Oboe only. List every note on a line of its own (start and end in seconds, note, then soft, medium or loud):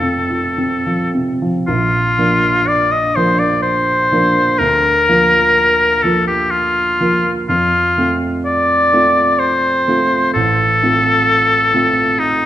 0.00 1.11 A4 medium
1.67 2.69 F4 medium
2.68 2.93 D5 medium
2.92 3.17 D#5 medium
3.16 3.41 C5 medium
3.39 3.62 D5 medium
3.62 4.60 C5 medium
4.59 6.04 A#4 medium
6.03 6.27 A4 medium
6.28 6.52 G4 medium
6.51 7.32 F4 medium
7.49 8.16 F4 medium
8.45 9.40 D5 medium
9.39 10.33 C5 medium
10.34 12.21 A4 medium
12.19 12.46 D#4 medium